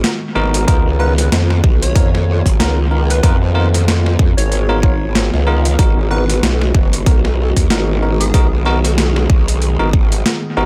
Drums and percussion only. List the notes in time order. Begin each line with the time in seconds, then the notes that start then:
0.04 snare, closed hi-hat
0.54 closed hi-hat
0.68 kick, closed hi-hat
1.18 snare, closed hi-hat
1.32 snare, closed hi-hat
1.50 snare
1.64 kick
1.82 closed hi-hat
1.96 kick, closed hi-hat
2.15 snare
2.46 kick, closed hi-hat
2.60 snare, closed hi-hat
3.10 closed hi-hat
3.23 kick, closed hi-hat
3.74 snare, closed hi-hat
3.88 snare, closed hi-hat
4.06 snare
4.19 kick
4.38 closed hi-hat
4.52 closed hi-hat
4.83 kick
5.15 snare, closed hi-hat
5.34 snare
5.65 closed hi-hat
5.79 kick, closed hi-hat
6.30 snare, closed hi-hat
6.43 snare, closed hi-hat
6.61 snare
6.74 kick
6.93 closed hi-hat
7.06 kick, closed hi-hat
7.25 snare
7.57 kick, closed hi-hat
7.70 snare, closed hi-hat
8.21 closed hi-hat
8.34 kick, closed hi-hat
8.85 snare, closed hi-hat
8.98 snare, closed hi-hat
9.16 snare
9.30 kick
9.48 closed hi-hat
9.62 closed hi-hat
9.93 kick
10.12 closed hi-hat
10.26 snare, closed hi-hat